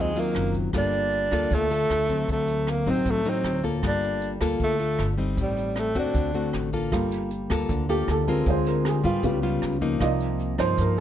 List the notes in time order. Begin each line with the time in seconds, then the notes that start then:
Already playing: D#2 D#3 F#3 C4 F4
0.00 G#3
0.16 F#3 C4 F4, closed hi-hat
0.20 A#3
0.35 F#1, cross-stick, closed hi-hat
0.54 kick, closed hi-hat
0.73 G1 G3 A#3 F4 A4, kick, cross-stick, closed hi-hat
0.77 D4
0.93 closed hi-hat
1.12 closed hi-hat
1.31 D2 A#3 F4 A4, kick, cross-stick, closed hi-hat
1.51 D2 D3 A3, kick, closed hi-hat
1.71 F4 A4, closed hi-hat
1.89 D2, cross-stick, closed hi-hat
2.09 F#3 C4, kick, closed hi-hat
2.28 D2 D3 A3, kick, closed hi-hat
2.48 closed hi-hat
2.67 A#3, cross-stick, closed hi-hat
2.86 A1 F#3 C4 D#4, kick, closed hi-hat
3.05 A1 A2, kick, closed hi-hat
3.10 A3
3.25 F#3 C4 D#4, closed hi-hat
3.29 C4
3.44 D2, cross-stick, closed hi-hat
3.63 A#3 F4 A4, kick, closed hi-hat
3.83 G1 G3, kick, cross-stick, closed hi-hat
3.87 D4
4.02 closed hi-hat
4.21 closed hi-hat
4.41 D2 A#3 F4 A4, kick, cross-stick, closed hi-hat
4.60 D2 D3 A3, kick, closed hi-hat
4.79 F4 A4, closed hi-hat
4.99 G1, cross-stick, closed hi-hat
5.17 G3 C4 D#4, kick, closed hi-hat
5.37 A1 A2, kick, closed hi-hat
5.42 G3
5.57 closed hi-hat
5.76 A3, cross-stick, closed hi-hat
5.95 D#2 A3 C4 F#4, kick, closed hi-hat
5.99 D4
6.14 D2 D3, kick, closed hi-hat
6.34 A3 C4 F#4, closed hi-hat
6.53 A1, cross-stick, closed hi-hat
6.73 A#3 F4 A4, kick, closed hi-hat
6.92 G1 G3 A#3 F4, kick, cross-stick, closed hi-hat
7.11 closed hi-hat
7.31 closed hi-hat
7.50 D2 A#3 F4 A4, kick, cross-stick, closed hi-hat
7.69 D2 D3, kick, closed hi-hat
7.89 A#3 F4 G4 A4, closed hi-hat
8.08 D2 A4, cross-stick, closed hi-hat
8.27 G#3 C4 F4 A#4, kick, closed hi-hat
8.46 D2 D3 G#3 C4 F4, kick, closed hi-hat
8.50 C5
8.66 A#4, closed hi-hat
8.84 G4, cross-stick, closed hi-hat
8.88 G#4
9.04 G#2 G3 B3 F4, kick, closed hi-hat
9.23 C#2 C#3 G3 B3 F4, kick, closed hi-hat
9.42 G3 B3 F4, closed hi-hat
9.62 C#2, cross-stick, closed hi-hat
9.81 F3 A#3 D#4, kick, closed hi-hat
9.99 C2 C3 A#3 D#4 F4 D5, kick, cross-stick, closed hi-hat
10.04 D#5
10.20 closed hi-hat
10.39 closed hi-hat
10.58 G2 F3 A#3 D#4 C5, kick, cross-stick, closed hi-hat
10.78 G2 A#4, kick, closed hi-hat
10.97 closed hi-hat